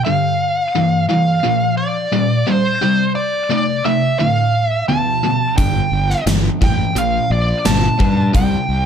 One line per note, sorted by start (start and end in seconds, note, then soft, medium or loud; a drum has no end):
0.05 0.68 G2 medium
0.05 0.68 D3 medium
0.05 1.05 F5 loud
0.75 1.06 G2 medium
0.75 1.06 E3 medium
1.09 1.41 G2 medium
1.09 1.41 E3 medium
1.09 1.74 F5 loud
1.44 2.06 A#2 medium
1.44 2.06 F3 medium
1.77 2.49 D5 medium
2.12 2.44 A#2 medium
2.12 2.44 G3 medium
2.46 2.79 A#2 medium
2.46 2.79 G3 medium
2.46 3.12 C5 medium
2.82 3.44 C3 medium
2.82 3.45 G3 medium
3.15 3.49 D5 medium
3.50 3.82 C3 medium
3.50 3.82 A3 medium
3.50 3.85 D5 medium
3.85 4.17 C3 medium
3.85 4.17 A3 medium
3.85 4.19 E5 medium
4.19 4.82 D2 medium
4.19 4.83 A2 medium
4.19 4.65 F5 medium
4.65 4.85 E5 medium
4.88 5.20 D2 medium
4.88 5.21 B2 medium
4.88 5.57 A5 loud
5.24 5.55 D2 medium
5.24 5.55 B2 medium
5.57 5.80 G1 medium
5.57 6.20 G2 medium
5.57 6.21 D3 medium
5.57 6.23 G5 medium
5.57 kick loud
5.57 closed hi-hat medium
5.91 6.13 G1 medium
6.10 snare soft
6.26 6.48 G1 medium
6.26 6.59 G2 medium
6.26 6.59 E3 medium
6.26 snare loud
6.26 closed hi-hat medium
6.61 6.83 A1 medium
6.61 6.93 G2 medium
6.61 6.93 E3 medium
6.61 6.95 G5 medium
6.61 kick medium
6.61 snare soft
6.95 7.17 A#1 medium
6.95 7.59 A#2 medium
6.95 7.59 F3 medium
6.95 7.32 F5 medium
6.95 closed hi-hat medium
7.30 7.52 A#1 medium
7.30 7.64 D5 medium
7.65 7.87 G1 medium
7.65 7.97 A#2 medium
7.65 7.97 G3 medium
7.65 8.31 A5 medium
7.65 snare loud
7.65 closed hi-hat medium
8.00 8.36 G2 medium
8.00 8.31 A#2 medium
8.00 8.32 G3 medium
8.00 kick medium
8.34 8.56 C2 medium
8.34 8.86 C3 medium
8.34 8.86 G3 medium
8.34 8.86 G5 medium
8.34 kick loud
8.34 closed hi-hat medium
8.69 8.86 C2 medium